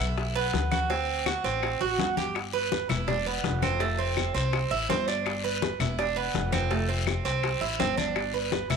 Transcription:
0.00 upright bass B1, cuban tres E4, high conga, short guiro
0.18 high bongo, high conga, long guiro
0.36 cuban tres B3, high conga
0.53 upright bass D2, high bongo, low bongo, high conga, short guiro
0.71 cuban tres F#4, high conga, short guiro, claves
0.90 cuban tres C4, high bongo, long guiro
1.09 high conga
1.26 cuban tres F#4, high bongo, high conga, short guiro, claves
1.44 upright bass A1, cuban tres C4, high bongo, high conga, short guiro
1.62 high bongo, high conga, long guiro, claves
1.81 upright bass A1, cuban tres F#4, high bongo, high conga
1.99 upright bass G1, high bongo, low bongo, high conga, short guiro
2.17 cuban tres G4, high bongo, high conga, short guiro
2.35 high bongo, high conga, long guiro, claves
2.53 cuban tres B4, high conga
2.72 high bongo, high conga, short guiro
2.89 upright bass E1, cuban tres E4, high conga, low conga, short guiro, claves
3.08 cuban tres D4, high bongo, high conga, low conga, long guiro
3.26 cuban tres B3, high conga
3.44 upright bass F1, high bongo, low bongo, high conga, short guiro
3.62 cuban tres C4, high conga, short guiro, claves
3.80 cuban tres A3, high bongo, high conga, long guiro
3.98 cuban tres C4, high conga
4.17 high bongo, high conga, short guiro, claves
4.34 upright bass C2, cuban tres C4, high bongo, high conga, short guiro
4.53 high bongo, high conga, long guiro, claves
4.71 upright bass A1, cuban tres E4, high bongo, high conga
4.89 upright bass G1, cuban tres C4, high bongo, low bongo, high conga, short guiro
5.08 cuban tres D4, high bongo, short guiro
5.26 high bongo, high conga, long guiro, claves
5.44 cuban tres B4, high conga
5.62 high bongo, high conga, short guiro
5.80 upright bass E1, cuban tres E4, high conga, low conga, short guiro, claves
5.98 cuban tres D4, high bongo, high conga, long guiro
6.16 cuban tres B3, high conga
6.34 upright bass F1, high bongo, low bongo, high conga, short guiro
6.52 cuban tres C4, high conga, short guiro, claves
6.71 cuban tres A3, high bongo, high conga, long guiro
6.89 cuban tres C4, high conga
7.07 high bongo, high conga, short guiro, claves
7.25 upright bass C2, cuban tres C4, high bongo, high conga, short guiro
7.43 high bongo, high conga, long guiro, claves
7.61 upright bass A1, cuban tres E4, high bongo, high conga
7.79 upright bass G1, cuban tres C4, high bongo, low bongo, high conga, short guiro
7.97 cuban tres D4, high bongo, high conga, short guiro
8.16 high bongo, high conga, long guiro, claves
8.34 cuban tres B4, high conga
8.52 high bongo, high conga, short guiro
8.70 upright bass E1, cuban tres E4, high conga, low conga, short guiro, claves

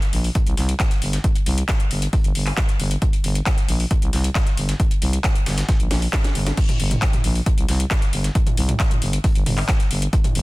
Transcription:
0.02 snare, closed hi-hat
0.13 fm bass A#1, closed hi-hat, open hi-hat
0.24 open hi-hat
0.35 kick, closed hi-hat
0.47 fm bass C2, closed hi-hat
0.57 fm bass C2, snare, closed hi-hat, open hi-hat
0.69 closed hi-hat
0.80 kick, snare, clap, closed hi-hat
0.91 snare, closed hi-hat
1.02 fm bass G1, closed hi-hat, open hi-hat
1.13 snare, closed hi-hat
1.24 kick, closed hi-hat
1.35 closed hi-hat
1.46 fm bass C2, closed hi-hat, open hi-hat
1.58 closed hi-hat
1.69 kick, snare, clap, closed hi-hat
1.80 closed hi-hat
1.91 fm bass G1, closed hi-hat, open hi-hat
2.02 closed hi-hat
2.13 kick, closed hi-hat, open hi-hat
2.24 fm bass G1, closed hi-hat
2.35 fm bass G1, closed hi-hat, open hi-hat
2.47 clap, open hi-hat
2.57 kick, snare, clap, closed hi-hat
2.69 snare, closed hi-hat
2.80 fm bass G1, closed hi-hat, open hi-hat
2.91 closed hi-hat
3.02 kick, closed hi-hat
3.13 closed hi-hat
3.24 fm bass G1, closed hi-hat, open hi-hat
3.35 closed hi-hat
3.46 kick, snare, clap, closed hi-hat
3.58 snare, closed hi-hat
3.69 fm bass A#1, closed hi-hat, open hi-hat
3.80 open hi-hat
3.91 kick, closed hi-hat
4.02 fm bass C2, closed hi-hat
4.13 fm bass C2, snare, closed hi-hat, open hi-hat
4.24 closed hi-hat
4.35 kick, snare, clap, closed hi-hat
4.47 snare, closed hi-hat
4.57 fm bass G1, closed hi-hat, open hi-hat
4.69 snare, closed hi-hat
4.80 kick, closed hi-hat
4.91 closed hi-hat
5.02 fm bass C2, closed hi-hat, open hi-hat
5.13 closed hi-hat
5.24 kick, snare, clap, closed hi-hat
5.35 closed hi-hat
5.46 fm bass G1, snare, closed hi-hat, open hi-hat
5.58 snare, closed hi-hat
5.69 kick, snare, closed hi-hat
5.80 fm bass A#1, closed hi-hat
5.91 fm bass A#1, snare, closed hi-hat, open hi-hat
6.02 open hi-hat
6.13 kick, snare, clap, closed hi-hat
6.24 snare, closed hi-hat
6.35 fm bass G1, closed hi-hat, open hi-hat
6.47 snare, closed hi-hat
6.57 kick, closed hi-hat, crash
6.69 closed hi-hat, mid tom
6.80 fm bass G1, closed hi-hat, open hi-hat
6.91 closed hi-hat, mid tom
7.02 kick, snare, clap, closed hi-hat
7.13 snare, closed hi-hat, mid tom
7.24 fm bass A#1, closed hi-hat, open hi-hat
7.35 open hi-hat
7.46 kick, closed hi-hat
7.58 fm bass C2, closed hi-hat
7.68 fm bass C2, snare, closed hi-hat, open hi-hat
7.80 closed hi-hat
7.91 kick, snare, clap, closed hi-hat
8.02 snare, closed hi-hat
8.13 fm bass G1, closed hi-hat, open hi-hat
8.24 snare, closed hi-hat
8.35 kick, closed hi-hat
8.47 closed hi-hat, mid tom
8.57 fm bass C2, closed hi-hat, open hi-hat
8.69 closed hi-hat, mid tom
8.80 kick, snare, clap, closed hi-hat
8.91 closed hi-hat, mid tom
9.02 fm bass G1, closed hi-hat, open hi-hat
9.13 closed hi-hat
9.24 kick, closed hi-hat, open hi-hat
9.35 fm bass G1, closed hi-hat
9.46 fm bass G1, closed hi-hat, mid tom, open hi-hat
9.58 clap, open hi-hat
9.69 kick, snare, clap, closed hi-hat
9.80 snare, closed hi-hat
9.91 fm bass G1, closed hi-hat, open hi-hat
10.02 closed hi-hat
10.13 kick, closed hi-hat
10.24 closed hi-hat, mid tom
10.35 fm bass G1, closed hi-hat, open hi-hat

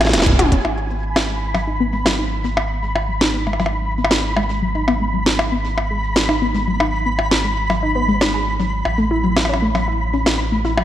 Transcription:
Already playing: sub bass A1, synth texture G#5
0.01 snare, closed hi-hat, percussion blips
0.05 snare, percussion blips
0.09 snare
0.13 sub bass E1, snare, closed hi-hat, percussion blips
0.18 snare, percussion blips
0.22 snare
0.26 synth pluck E4, kick, closed hi-hat
0.30 kick
0.33 kick
0.36 kick, closed hi-hat, high tom, percussion blips
0.39 kick
0.42 kick
0.46 kick
0.49 kick, closed hi-hat
0.52 synth pluck C#4, kick
0.65 sub bass G#1, synth pluck D#4, synth texture B5, percussion blips
0.91 synth pluck B3
1.16 snare, percussion blips
1.29 synth pluck G#3
1.55 synth pluck F#3, percussion blips
1.67 synth pluck D#4
1.80 synth pluck B3
1.93 synth pluck G#3
2.06 synth pluck F#3, snare, percussion blips
2.19 synth pluck D#4
2.44 synth pluck B3
2.57 percussion blips
2.83 synth pluck G#3
2.96 percussion blips
3.08 synth pluck F#3
3.21 synth pluck D#4, snare
3.34 synth pluck B3
3.47 synth pluck G#3, percussion blips
3.53 percussion blips
3.60 synth pluck F#3, percussion blips
3.66 percussion blips
3.72 synth pluck D#4
3.98 synth pluck B3
4.04 percussion blips
4.11 snare
4.37 synth pluck G#3, percussion blips
4.62 synth pluck F#3
4.75 synth pluck D#4
4.88 synth pluck B3, percussion blips
5.01 synth pluck G#3
5.13 synth pluck F#3
5.26 synth pluck D#4, snare
5.39 percussion blips
5.52 synth pluck B3
5.78 percussion blips
5.91 synth pluck G#3
6.16 synth pluck F#3, snare
6.29 synth pluck D#4, percussion blips
6.42 synth pluck B3
6.55 synth pluck G#3
6.67 synth pluck F#3
6.80 synth pluck D#4, percussion blips
7.06 synth pluck B3
7.19 percussion blips
7.31 snare
7.44 synth pluck G#3
7.70 synth pluck F#3, percussion blips
7.83 synth pluck D#4
7.95 synth pluck B3
8.08 synth pluck G#3
8.21 synth pluck D#4, snare, percussion blips
8.34 synth pluck G#4
8.60 synth pluck F#3
8.85 sub bass A1, percussion blips
8.98 synth pluck A3
9.11 synth pluck E4
9.24 synth pluck F#3
9.37 snare, percussion blips
9.45 percussion blips
9.49 synth pluck C#4
9.54 percussion blips
9.62 synth pluck A3
9.75 synth pluck F#3, percussion blips
9.88 synth pluck E4
10.14 synth pluck C#4
10.26 snare, percussion blips
10.52 synth pluck A3
10.65 synth pluck E4
10.77 synth pluck F#3, percussion blips

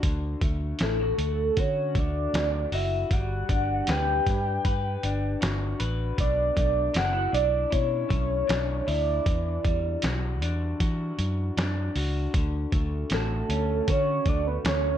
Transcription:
Already playing: clean electric guitar D4 F#4
0.03 fingered electric bass D2, clean electric guitar D3, kick, closed hi-hat
0.41 fingered electric bass D2, clean electric guitar A3, kick, closed hi-hat
0.79 fingered electric bass A1, clean electric guitar E4, soft synth lead A4, snare, closed hi-hat
1.00 clean electric guitar F#4
1.18 fingered electric bass D2, closed hi-hat
1.57 fingered electric bass D3, clean electric guitar F#4, soft synth lead C#5, kick, closed hi-hat
1.95 fingered electric bass D2, clean electric guitar A3, soft synth lead D5, kick, closed hi-hat
2.34 fingered electric bass D2, snare, closed hi-hat
2.72 fingered electric bass F#1, clean electric guitar F#4, soft synth lead E5, open hi-hat
3.11 fingered electric bass G1, clean electric guitar G3, soft synth lead F#5, kick, closed hi-hat
3.49 fingered electric bass G1, clean electric guitar D4, kick, closed hi-hat
3.87 fingered electric bass D2, clean electric guitar B4, soft synth lead G5, snare, closed hi-hat
4.26 fingered electric bass G2, kick, snare, closed hi-hat
4.65 fingered electric bass G2, clean electric guitar B4, kick, closed hi-hat
5.03 fingered electric bass G1, clean electric guitar D4, closed hi-hat
5.41 fingered electric bass G1, clean electric guitar F#4, snare, closed hi-hat
5.80 fingered electric bass A1, clean electric guitar B4, closed hi-hat
6.18 fingered electric bass B1, clean electric guitar B2, soft synth lead D5, kick, closed hi-hat
6.56 fingered electric bass B1, clean electric guitar A3, soft synth lead D5, kick, closed hi-hat
6.94 fingered electric bass F#1, clean electric guitar D4, soft synth lead F#5, snare, closed hi-hat
7.13 clean electric guitar E4
7.32 fingered electric bass B1, clean electric guitar D4, soft synth lead D5, closed hi-hat
7.70 fingered electric bass B2, clean electric guitar E4, soft synth lead C#5, kick, closed hi-hat
8.09 fingered electric bass B1, clean electric guitar A3, kick, closed hi-hat
8.47 fingered electric bass B1, clean electric guitar D4, snare, closed hi-hat
8.87 fingered electric bass D2, clean electric guitar E4, soft synth lead D5, open hi-hat
9.26 fingered electric bass E2, clean electric guitar E3, kick, closed hi-hat
9.64 fingered electric bass E2, clean electric guitar G3, kick, closed hi-hat
10.02 fingered electric bass B1, clean electric guitar F#4, snare, closed hi-hat
10.42 fingered electric bass E2, clean electric guitar D4, closed hi-hat
10.80 fingered electric bass E3, clean electric guitar F#4, kick, closed hi-hat
11.19 fingered electric bass F#2, closed hi-hat
11.57 fingered electric bass F#2, clean electric guitar D4, snare, closed hi-hat
11.95 fingered electric bass C#2, clean electric guitar F#4, open hi-hat
12.34 fingered electric bass D2, clean electric guitar D3, kick, closed hi-hat
12.72 fingered electric bass D2, clean electric guitar A3, kick, closed hi-hat
13.10 fingered electric bass A1, clean electric guitar F#4, soft synth lead A4, snare, closed hi-hat
13.49 fingered electric bass D2, clean electric guitar C#4, closed hi-hat
13.88 fingered electric bass D3, clean electric guitar F#4, soft synth lead C#5, kick, closed hi-hat
14.26 fingered electric bass D2, clean electric guitar A3, soft synth lead D5, kick, closed hi-hat
14.47 soft synth lead B4
14.64 fingered electric bass D2, clean electric guitar C#4, soft synth lead C#5, snare, closed hi-hat

